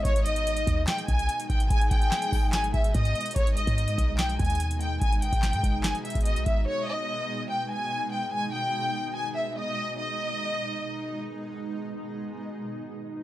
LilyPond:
<<
  \new Staff \with { instrumentName = "Soft synth lead" } { \time 4/4 \key gis \minor \tempo 4 = 145 r1 | gis''2. r4 | r1 | r1 |
r1 | r1 | r1 | r1 | }
  \new Staff \with { instrumentName = "Violin section" } { \time 4/4 \key gis \minor cis''8 dis''4. g''8 gis''4 g''8 | gis''8 g''4. gis''8 e''8 dis''4 | cis''8 dis''4. g''8 gis''4 g''8 | gis''8 g''4. gis''8 e''8 dis''8 e''8 |
cis''8 dis''4. g''8 gis''4 g''8 | gis''8 g''4. gis''8 e''8 dis''4 | dis''2. r4 | r1 | }
  \new Staff \with { instrumentName = "Ambient pad" } { \clef bass \time 4/4 \key gis \minor << { dis'1~ | dis'1 | dis'1~ | dis'1 |
dis'1~ | dis'1 | <b, gis dis'>1~ | <b, gis dis'>1 | } \\ { <b, gis>1~ | <b, gis>1 | <b, gis>1~ | <b, gis>1~ |
<b, gis>1~ | <b, gis>1 | r1 | r1 | } >> }
  \new Staff \with { instrumentName = "808-style bass" } { \clef bass \time 4/4 \key gis \minor gis,,4. dis,8 r8 b,,8 r8 gis,,8 | gis,,8 gis,,8 r8 gis,,4 gis,,8 gis,8 r8 | gis,,8. gis,8. b,,4 dis,4. | gis,,8. gis,,8 gis,16 g,,8. r8 gis,,8 b,,16 gis,,8 |
r1 | r1 | r1 | r1 | }
  \new DrumStaff \with { instrumentName = "Drums" } \drummode { \time 4/4 <hh bd>16 hh16 hh16 hh16 hh16 hh16 <hh bd>8 <hc hh sn>16 hh16 <hh bd>16 hh16 hh16 hh16 <hh bd>16 hh16 | <hh bd>16 hh16 <hh bd>16 hh16 <hc hh sn>16 hh16 <hho bd>8 <hc hh sn>16 hh16 <hh bd>16 hh16 <hh bd>16 hh16 hh32 hh32 hh32 hh32 | <hh bd>16 hh16 hh16 <hh bd>16 hh16 hh16 <hh bd>8 <hc hh sn>16 hh16 <hh bd>32 hh32 hh32 hh32 hh16 hh16 hh8 | <hh bd>16 hh16 hh16 <hh bd>16 <hc hh sn>16 hh16 <hh bd>8 <hc hh sn>16 hh16 hh32 hh32 <hh bd>32 hh32 hh16 hh16 <hh bd>8 |
r4 r4 r4 r4 | r4 r4 r4 r4 | r4 r4 r4 r4 | r4 r4 r4 r4 | }
>>